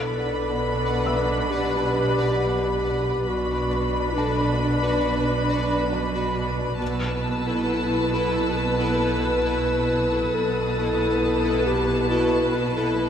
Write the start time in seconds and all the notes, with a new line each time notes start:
Already playing: B1 B2 D4 A4 B4 D5 F#5 B5
1.06 E5 E6
1.50 G4
3.26 B1 B2 D4 F#4 B4 D5 B5
4.16 D4 A4 A5
5.93 B5
6.79 B1 B2 B3 E4 A4 B4 A5 E6
7.67 E4 B5
8.57 B4
10.34 B1 B2 B3 E4 A4 B4 A5
10.43 D#6
11.66 G4
12.10 F#4
12.55 E4